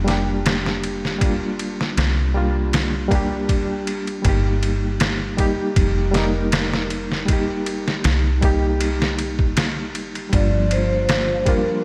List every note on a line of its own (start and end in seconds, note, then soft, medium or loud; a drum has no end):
0.00 1.94 F1 medium
0.00 0.04 G3 medium
0.00 0.07 A#3 medium
0.00 0.09 D4 medium
0.00 1.25 F4 medium
0.04 1.15 G3 medium
0.04 1.17 A#3 medium
0.04 ride medium
0.08 1.18 D4 medium
0.08 1.19 G4 medium
0.08 snare soft
0.46 snare loud
0.46 ride medium
0.66 snare soft
0.84 ride medium
1.05 snare soft
1.18 2.29 G3 medium
1.18 2.30 A#3 medium
1.18 kick loud
1.18 ride medium
1.23 2.32 D4 medium
1.23 2.33 F4 medium
1.59 ride medium
1.81 snare soft
1.97 3.87 C2 medium
1.97 snare loud
1.97 ride medium
2.34 3.06 G3 medium
2.34 3.07 A#3 medium
2.34 3.07 D4 medium
2.34 3.08 F4 medium
2.73 snare loud
2.73 ride medium
3.08 4.19 G3 medium
3.08 4.20 A#3 medium
3.08 kick medium
3.08 ride medium
3.12 4.21 D4 medium
3.12 4.23 G4 loud
3.49 kick medium
3.49 ride medium
3.87 4.21 G1 medium
3.87 ride medium
4.07 ride soft
4.22 5.55 G1 medium
4.22 5.33 G3 medium
4.22 5.34 A#3 medium
4.22 kick medium
4.22 ride medium
4.27 5.35 D#4 medium
4.27 5.36 G4 medium
4.63 ride medium
5.00 snare loud
5.00 ride medium
5.37 6.10 G3 medium
5.37 6.10 A#3 medium
5.37 6.11 D#4 medium
5.37 6.11 G4 medium
5.37 kick medium
5.37 ride medium
5.76 8.01 F1 medium
5.76 kick loud
5.76 ride medium
6.11 7.23 G3 medium
6.11 7.24 A#3 medium
6.11 snare medium
6.11 ride medium
6.16 7.25 D#4 medium
6.16 7.26 A#4 medium
6.52 snare loud
6.52 ride medium
6.73 snare soft
6.90 ride medium
7.12 snare soft
7.26 8.37 G3 medium
7.26 8.38 A#3 medium
7.26 kick medium
7.26 ride medium
7.30 8.39 D#4 medium
7.30 8.40 G4 medium
7.66 ride medium
7.88 snare soft
8.04 9.95 C2 medium
8.04 snare loud
8.04 ride medium
8.41 9.14 G3 medium
8.41 9.14 A#3 medium
8.41 9.15 D#4 medium
8.41 9.15 G4 medium
8.41 kick medium
8.41 ride medium
8.80 ride medium
9.02 snare medium
9.19 ride medium
9.39 kick medium
9.57 snare loud
9.57 ride medium
9.95 10.29 G1 medium
9.95 ride medium
10.15 ride soft
10.30 11.63 G1 medium
10.30 11.84 F3 medium
10.30 11.41 G3 medium
10.30 11.42 A#3 medium
10.30 11.84 F4 medium
10.30 kick loud
10.30 ride medium
10.34 11.43 D4 medium
10.34 11.44 F4 medium
10.34 10.72 D5 loud
10.71 11.49 C5 loud
10.71 ride medium
11.09 snare loud
11.09 ride medium
11.45 11.84 G3 medium
11.45 11.84 A#3 medium
11.45 11.84 D4 medium
11.45 11.84 F4 medium
11.45 11.84 A#4 loud
11.45 kick medium
11.45 ride medium